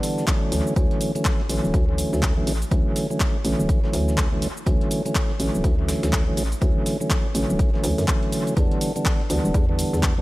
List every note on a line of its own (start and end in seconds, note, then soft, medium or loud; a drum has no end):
0.00 0.25 D3 medium
0.00 0.26 E3 medium
0.00 0.26 G3 medium
0.00 0.26 B3 medium
0.00 0.26 D4 medium
0.00 snare soft
0.00 closed hi-hat medium
0.00 open hi-hat loud
0.00 shaker medium
0.18 snare soft
0.18 shaker soft
0.27 0.74 D3 medium
0.27 0.74 E3 medium
0.27 0.74 F#3 medium
0.27 0.74 A3 medium
0.27 0.74 C#4 loud
0.27 kick loud
0.27 snare loud
0.27 clap loud
0.27 closed hi-hat medium
0.27 shaker soft
0.52 0.61 D2 medium
0.52 closed hi-hat medium
0.52 open hi-hat loud
0.52 shaker medium
0.67 shaker soft
0.76 0.86 D2 loud
0.76 1.12 D3 loud
0.76 1.12 E3 medium
0.76 1.12 F#3 medium
0.76 1.12 A3 medium
0.76 1.12 C#4 loud
0.76 kick loud
0.76 closed hi-hat medium
0.76 shaker soft
0.91 closed hi-hat soft
1.01 closed hi-hat medium
1.01 open hi-hat loud
1.01 shaker medium
1.15 1.42 D3 medium
1.15 1.42 E3 medium
1.15 1.42 F#3 medium
1.15 1.42 A3 medium
1.15 1.42 C#4 medium
1.15 closed hi-hat soft
1.15 shaker soft
1.25 kick loud
1.25 snare loud
1.25 clap loud
1.25 closed hi-hat medium
1.25 shaker soft
1.40 snare soft
1.49 1.59 A1 loud
1.49 1.85 D3 medium
1.49 1.85 E3 medium
1.49 1.85 F#3 medium
1.49 1.85 A3 medium
1.49 1.85 C#4 medium
1.49 closed hi-hat medium
1.49 open hi-hat loud
1.49 shaker medium
1.64 1.70 D1 loud
1.64 shaker soft
1.74 2.04 D2 loud
1.74 kick loud
1.74 closed hi-hat medium
1.74 shaker soft
1.88 2.34 D3 medium
1.88 2.34 E3 medium
1.88 2.34 F#3 medium
1.88 2.34 A3 medium
1.88 2.34 C#4 medium
1.98 closed hi-hat medium
1.98 open hi-hat loud
1.98 shaker medium
2.13 2.41 D2 medium
2.13 snare medium
2.13 shaker soft
2.23 kick loud
2.23 snare loud
2.23 clap loud
2.23 closed hi-hat medium
2.23 shaker soft
2.37 2.52 D3 loud
2.37 2.52 E3 medium
2.37 2.53 F#3 medium
2.37 2.53 A3 medium
2.37 2.53 C#4 loud
2.47 2.64 A1 medium
2.47 closed hi-hat medium
2.47 open hi-hat loud
2.47 shaker medium
2.62 closed hi-hat soft
2.62 shaker soft
2.71 2.81 D2 loud
2.71 3.07 D3 loud
2.71 3.07 E3 medium
2.71 3.07 F#3 medium
2.71 3.07 A3 medium
2.71 3.07 C#4 loud
2.71 kick loud
2.71 closed hi-hat medium
2.71 shaker soft
2.96 snare medium
2.96 closed hi-hat medium
2.96 open hi-hat loud
2.96 shaker medium
3.10 3.37 D3 medium
3.10 3.37 E3 medium
3.10 3.37 F#3 medium
3.10 3.37 A3 medium
3.10 3.37 C#4 medium
3.10 shaker soft
3.20 kick loud
3.20 snare loud
3.20 clap loud
3.20 closed hi-hat medium
3.20 shaker soft
3.44 3.54 A1 loud
3.44 3.80 D3 medium
3.44 3.80 E3 medium
3.44 3.80 F#3 medium
3.44 3.80 A3 medium
3.44 3.80 C#4 loud
3.44 closed hi-hat medium
3.44 open hi-hat loud
3.44 shaker medium
3.59 3.65 D1 medium
3.59 shaker soft
3.69 kick loud
3.69 closed hi-hat medium
3.69 shaker soft
3.83 4.29 D3 medium
3.83 4.29 E3 medium
3.83 4.29 F#3 medium
3.83 4.29 A3 medium
3.83 4.29 C#4 medium
3.83 snare soft
3.93 4.48 D2 loud
3.93 snare soft
3.93 closed hi-hat medium
3.93 open hi-hat loud
3.93 shaker medium
4.08 snare soft
4.08 shaker soft
4.18 kick loud
4.18 snare loud
4.18 clap loud
4.18 closed hi-hat medium
4.18 shaker soft
4.32 4.48 D3 loud
4.32 4.48 E3 medium
4.32 4.48 F#3 medium
4.32 4.48 A3 medium
4.32 4.48 C#4 loud
4.42 closed hi-hat medium
4.42 open hi-hat loud
4.42 shaker medium
4.57 shaker soft
4.66 4.76 D2 loud
4.66 5.02 D3 loud
4.66 5.02 E3 medium
4.66 5.02 F#3 medium
4.66 5.02 A3 medium
4.66 5.02 C#4 loud
4.66 kick loud
4.66 closed hi-hat medium
4.66 shaker soft
4.81 closed hi-hat soft
4.91 closed hi-hat medium
4.91 open hi-hat loud
4.91 shaker medium
5.05 5.32 D3 medium
5.05 5.32 E3 medium
5.05 5.32 F#3 medium
5.05 5.32 A3 medium
5.05 5.32 C#4 medium
5.05 closed hi-hat soft
5.05 shaker soft
5.15 kick loud
5.15 snare loud
5.15 clap loud
5.15 closed hi-hat medium
5.15 shaker soft
5.30 snare soft
5.39 5.49 A1 loud
5.39 5.75 D3 medium
5.39 5.75 E3 medium
5.39 5.75 F#3 medium
5.39 5.75 A3 medium
5.39 5.75 C#4 loud
5.39 closed hi-hat medium
5.39 open hi-hat loud
5.39 shaker medium
5.54 5.60 D1 loud
5.54 shaker soft
5.64 5.94 D2 loud
5.64 kick loud
5.64 closed hi-hat medium
5.64 shaker soft
5.78 6.24 D3 medium
5.78 6.24 E3 medium
5.78 6.24 F#3 medium
5.78 6.24 A3 medium
5.78 6.24 C#4 medium
5.88 snare loud
5.88 closed hi-hat medium
5.88 open hi-hat loud
5.88 shaker medium
6.03 6.31 D2 medium
6.03 snare loud
6.03 closed hi-hat medium
6.03 shaker soft
6.13 kick loud
6.13 snare loud
6.13 clap loud
6.13 closed hi-hat medium
6.13 shaker soft
6.27 6.43 D3 loud
6.27 6.43 E3 medium
6.27 6.43 F#3 medium
6.27 6.43 A3 medium
6.27 6.43 C#4 loud
6.37 6.54 A1 medium
6.37 closed hi-hat medium
6.37 open hi-hat loud
6.37 shaker medium
6.52 closed hi-hat soft
6.52 shaker soft
6.61 6.71 D2 loud
6.61 6.97 D3 loud
6.61 6.97 E3 medium
6.61 6.97 F#3 medium
6.61 6.97 A3 medium
6.61 6.97 C#4 loud
6.61 kick loud
6.61 closed hi-hat medium
6.61 shaker soft
6.86 snare medium
6.86 closed hi-hat medium
6.86 open hi-hat loud
6.86 shaker medium
7.00 7.27 D3 medium
7.00 7.27 E3 medium
7.00 7.27 F#3 medium
7.00 7.27 A3 medium
7.00 7.27 C#4 medium
7.00 shaker soft
7.10 kick loud
7.10 snare loud
7.10 clap loud
7.10 closed hi-hat medium
7.10 shaker soft
7.34 7.44 A1 loud
7.34 7.70 D3 medium
7.34 7.70 E3 medium
7.34 7.70 F#3 medium
7.34 7.71 A3 medium
7.34 7.71 C#4 loud
7.34 closed hi-hat medium
7.34 open hi-hat loud
7.34 shaker medium
7.49 7.56 D1 medium
7.49 shaker soft
7.59 kick loud
7.59 closed hi-hat medium
7.59 shaker soft
7.74 8.06 D3 medium
7.74 8.06 E3 medium
7.74 8.06 F#3 medium
7.74 8.06 A3 medium
7.74 8.06 C#4 medium
7.74 snare soft
7.84 7.93 D2 loud
7.84 snare soft
7.84 closed hi-hat medium
7.84 open hi-hat loud
7.84 shaker medium
7.98 8.04 F#2 medium
7.98 snare soft
7.98 open hi-hat medium
7.98 shaker soft
8.08 8.54 D3 medium
8.08 8.54 E3 medium
8.08 8.54 F#3 medium
8.08 8.55 A3 medium
8.08 8.55 C#4 loud
8.08 kick loud
8.08 clap loud
8.08 closed hi-hat medium
8.08 shaker soft
8.23 closed hi-hat soft
8.32 closed hi-hat medium
8.32 open hi-hat loud
8.32 shaker medium
8.47 closed hi-hat soft
8.47 shaker soft
8.56 8.66 E2 loud
8.56 8.92 D3 loud
8.56 8.92 E3 medium
8.56 8.92 G3 medium
8.56 8.92 B3 medium
8.56 8.93 D4 loud
8.56 kick loud
8.56 closed hi-hat medium
8.56 shaker soft
8.71 closed hi-hat soft
8.81 closed hi-hat medium
8.81 open hi-hat loud
8.81 shaker medium
8.96 9.22 D3 medium
8.96 9.22 E3 medium
8.96 9.22 G3 medium
8.96 9.22 B3 medium
8.96 9.22 D4 medium
8.96 closed hi-hat soft
8.96 shaker soft
9.05 kick loud
9.05 snare loud
9.05 clap loud
9.05 closed hi-hat medium
9.05 shaker soft
9.20 snare soft
9.30 9.39 D2 loud
9.30 9.65 D3 medium
9.30 9.65 E3 medium
9.30 9.66 G3 medium
9.30 9.66 B3 medium
9.30 9.66 D4 medium
9.30 closed hi-hat medium
9.30 open hi-hat loud
9.30 shaker medium
9.45 9.51 E1 loud
9.45 shaker soft
9.54 9.85 E2 loud
9.54 kick loud
9.54 closed hi-hat medium
9.54 shaker soft
9.69 10.14 D3 medium
9.69 10.14 E3 medium
9.69 10.14 G3 medium
9.69 10.14 B3 medium
9.69 10.14 D4 medium
9.79 closed hi-hat medium
9.79 open hi-hat loud
9.79 shaker medium
9.93 10.22 E2 medium
9.93 snare medium
9.93 shaker soft
10.03 kick loud
10.03 snare loud
10.03 clap loud
10.03 closed hi-hat medium
10.03 shaker soft
10.17 10.22 D3 loud
10.17 10.22 E3 medium
10.17 10.22 G3 medium
10.17 10.22 B3 medium
10.17 10.22 D4 loud